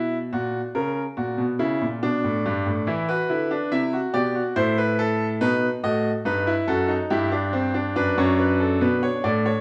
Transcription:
grand piano
Already playing: B2 E4
0.33 A#2 F#4
0.75 C#3 A#4
1.17 A#2 F#4
1.38 B2
1.59 C#3 E4
1.81 A#2
2.03 B2 D4
2.24 A2
2.46 G2
2.66 A2
2.87 E3 E4
3.08 F#4 B4
3.30 D3 E4
3.51 D4
3.72 C3 E4 E5
3.93 F#4
4.14 B2 G4 D5
4.35 F#4
4.56 A2 E4 C5
4.78 B4
4.99 A4
5.41 B2 D#4 B4
5.83 A2 F#4 D#5
6.25 G2 D#4 B4
6.47 E4
6.68 F#2 F#4 A4
6.88 D#4
7.10 G2 E4 G4
7.32 D4
7.53 C4
7.74 D4
7.96 F#2 D4 B4
8.18 F#2 C#5
8.39 B4
8.60 A4
8.81 B2 B4
9.03 C#5
9.24 A2 D5
9.46 C#5

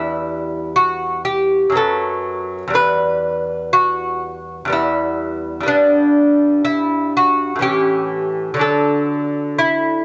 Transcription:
lute
Already playing: E2 G3 B3 E4
0.76 F#4
1.25 G4
1.70 F#2 F#3
1.75 B3 A4
2.68 E2 G3
2.74 B3 B4
3.73 F#4
4.65 E2 G3
4.70 B3 E4
5.60 G2 G3
5.66 B3 D4
6.65 E4
7.17 F#4
7.56 A2 E3
7.61 C#4 G4
8.54 D3 F#3
8.59 D4 A4
9.58 E4

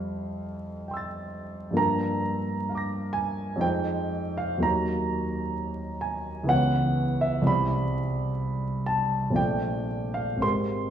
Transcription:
grand piano
Already playing: F2 G3 C4 E4 A4 F5
0.88 G5 C6
0.93 E6 A6
1.71 G2 F3 A#3
1.76 D4 A#4 A#5
2.69 F5 A#5
2.75 D6 A#6
3.13 G#5
3.56 F2 F3 G#3 D#4
3.61 C5 G5
4.38 F5
4.58 D#2 F#3 A#3 D#4
4.63 C#5 A#5
6.01 G#5
6.44 C#2 E3 B3 E4
6.48 C#5 F#5
7.21 E5
7.42 C2 G3 C4 E4
7.47 D5 B5
8.86 A5
9.30 A#1 A3 C4 F4
9.35 D5 G5
10.14 F5
10.37 G#1 G#3 C4 G4
10.42 A#4 C6

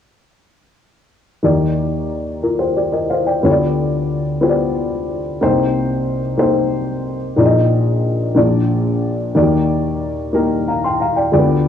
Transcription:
upright piano
1.43 D#2 D#3 A#3 D#4 G4 D5
2.43 F4 A#4
2.59 G4 C5
2.76 G4 D5
2.92 A#4 D#5
3.10 C5 F5
3.26 D5 G5
3.43 D2 D3 B3 F4 G4 C#5
3.52 D5
4.41 B3 F4 G4 C5
4.49 D5
5.41 C2 C3 A#3 D#4 G4 C5
6.38 A#3 D#4 G4 C5
7.36 A#1 A#2 A#3 D#4 F4 D5
7.45 D#5
8.35 A#1 A#2 A#3 D4 F4 D5
9.35 D#2 D#3 A#3 D#4 F#4 D5
9.42 G4
10.33 A#3 D#4 G4 A#4
10.68 F5 A#5
10.84 G5 C6
11.00 F5 A#5
11.16 D5 G5
11.32 D2 D3 G#3 F4 G4 D5
11.38 B3

